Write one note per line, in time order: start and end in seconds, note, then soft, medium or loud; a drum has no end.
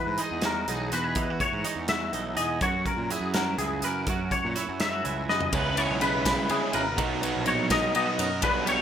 0.00 1.16 E3 medium
0.00 0.18 F#3 medium
0.00 0.43 F#4 soft
0.00 0.21 B4 medium
0.06 0.18 G#2 medium
0.18 1.13 G#3 medium
0.18 0.68 D#4 medium
0.18 0.45 G#4 medium
0.18 closed hi-hat medium
0.31 0.64 E2 medium
0.42 0.93 F#4 medium
0.42 0.69 A#4 medium
0.42 snare loud
0.42 closed hi-hat medium
0.68 0.90 B1 medium
0.68 1.14 B2 soft
0.68 1.14 D#4 medium
0.68 0.93 G#4 medium
0.68 closed hi-hat medium
0.92 1.14 E2 medium
0.92 1.04 F#4 soft
0.92 1.41 B4 medium
0.92 closed hi-hat medium
1.04 1.16 G#4 soft
1.15 1.38 E2 medium
1.15 2.66 E3 medium
1.15 1.30 D#4 medium
1.15 kick loud
1.15 closed hi-hat medium
1.30 1.88 F#4 medium
1.40 1.89 C#5 medium
1.40 kick medium
1.40 closed hi-hat medium
1.53 1.64 G#2 medium
1.64 2.59 G#3 medium
1.64 2.13 D#4 medium
1.64 closed hi-hat medium
1.76 2.10 E2 medium
1.88 2.63 F#4 medium
1.88 2.36 E5 medium
1.88 snare loud
1.88 closed hi-hat medium
2.13 2.35 B1 medium
2.13 2.59 B2 medium
2.13 2.60 D#4 medium
2.13 closed hi-hat medium
2.36 2.59 E2 medium
2.36 2.59 G#4 medium
2.36 2.62 D#5 medium
2.36 closed hi-hat medium
2.61 2.84 F#2 medium
2.61 4.08 F#2 medium
2.61 3.36 F#4 medium
2.61 2.87 C#5 medium
2.61 kick loud
2.61 closed hi-hat medium
2.86 3.10 A#4 medium
2.86 kick medium
2.86 closed hi-hat soft
2.97 3.09 A#2 medium
3.10 4.54 F#3 medium
3.10 3.60 E4 medium
3.10 3.34 G#4 medium
3.10 closed hi-hat soft
3.21 3.55 F#2 medium
3.34 4.06 F#4 medium
3.34 3.58 A#4 medium
3.34 snare loud
3.34 closed hi-hat medium
3.58 3.81 C#2 medium
3.58 4.05 C#3 medium
3.58 4.12 E4 soft
3.58 3.84 G#4 medium
3.58 closed hi-hat medium
3.82 4.05 F#2 medium
3.82 4.32 A#4 medium
3.82 4.05 B4 medium
3.82 closed hi-hat medium
4.07 4.29 F#2 medium
4.07 5.54 F#2 medium
4.07 4.80 F#4 medium
4.07 kick loud
4.07 closed hi-hat medium
4.31 4.80 C#5 medium
4.31 kick medium
4.31 closed hi-hat medium
4.44 4.55 A#2 medium
4.56 5.53 F#3 medium
4.56 5.04 E4 medium
4.56 closed hi-hat medium
4.69 5.02 F#2 medium
4.80 4.93 D#4 medium
4.80 5.29 E5 medium
4.80 snare loud
4.80 closed hi-hat medium
4.93 5.53 F#4 medium
5.04 5.27 C#2 medium
5.04 5.50 C#3 medium
5.04 5.50 E4 medium
5.04 closed hi-hat medium
5.29 5.51 F#2 medium
5.29 5.50 B4 medium
5.29 5.53 D#5 medium
5.29 snare medium
5.41 floor tom medium
5.53 5.86 C#2 loud
5.53 5.77 C#3 medium
5.53 6.96 C#3 medium
5.53 5.77 G#3 medium
5.53 5.77 G#3 soft
5.53 6.02 B3 medium
5.53 5.77 C#4 medium
5.53 5.77 E4 medium
5.53 5.78 B4 medium
5.53 kick loud
5.53 ride loud
5.57 6.52 D#4 medium
5.57 6.27 B4 medium
5.77 6.01 C#3 medium
5.77 6.96 G#3 medium
5.77 6.01 G#3 medium
5.77 6.02 C#4 medium
5.77 6.02 E4 medium
5.77 6.01 C#5 medium
5.77 ride medium
5.90 6.12 B1 medium
6.01 6.26 C#3 medium
6.01 6.25 G#3 medium
6.01 6.98 B3 medium
6.01 6.25 C#4 medium
6.01 6.25 E4 medium
6.01 6.50 B4 medium
6.01 ride medium
6.14 6.36 B1 medium
6.25 6.48 C#3 medium
6.25 6.48 G#3 medium
6.25 6.49 C#4 medium
6.25 6.50 E4 loud
6.25 6.74 B4 medium
6.25 kick medium
6.25 snare loud
6.25 ride loud
6.49 6.81 C#3 medium
6.49 6.61 C#3 medium
6.49 6.81 G#3 medium
6.49 6.82 C#4 medium
6.49 6.82 E4 medium
6.49 6.74 G#4 medium
6.49 ride medium
6.73 6.96 G#1 medium
6.73 6.99 A#4 medium
6.73 7.00 B4 medium
6.73 ride medium
6.97 7.31 B1 medium
6.97 8.40 B2 medium
6.97 7.22 B2 medium
6.97 7.21 F#3 medium
6.97 7.22 F#3 medium
6.97 7.21 B3 medium
6.97 7.20 D#4 medium
6.97 7.46 D#4 medium
6.97 7.94 F#4 medium
6.97 7.71 A#4 medium
6.97 kick loud
6.97 ride medium
7.21 7.45 B2 medium
7.21 7.46 F#3 medium
7.21 8.44 F#3 medium
7.21 7.46 B3 medium
7.21 7.46 D#4 medium
7.21 ride medium
7.35 7.57 A#1 medium
7.46 7.70 B2 medium
7.46 7.70 F#3 medium
7.46 7.70 B3 medium
7.46 7.93 D#4 medium
7.46 7.69 D#4 medium
7.46 7.71 C#5 medium
7.46 ride medium
7.58 7.81 A#1 medium
7.70 7.93 B2 medium
7.70 7.94 F#3 medium
7.70 7.94 B3 medium
7.70 7.95 D#4 medium
7.70 8.19 A#4 medium
7.70 7.95 D#5 medium
7.70 kick medium
7.70 snare loud
7.70 ride loud
7.94 8.26 B2 medium
7.94 8.06 B2 medium
7.94 8.26 F#3 medium
7.94 8.27 B3 medium
7.94 8.06 D#4 medium
7.94 8.27 D#4 medium
7.94 8.43 D#5 medium
7.94 ride medium
8.06 8.43 F#4 soft
8.19 8.41 F#2 medium
8.19 8.41 A#4 medium
8.19 ride medium
8.41 8.76 B1 medium
8.41 8.82 B2 medium
8.41 8.67 B2 medium
8.41 8.67 G3 medium
8.41 8.66 B3 medium
8.41 8.67 D4 loud
8.41 8.68 B4 loud
8.41 kick loud
8.41 ride medium
8.66 8.82 B2 medium
8.66 8.82 G3 medium
8.66 8.82 B3 medium
8.66 8.82 D4 medium
8.66 8.82 C#5 medium
8.66 ride medium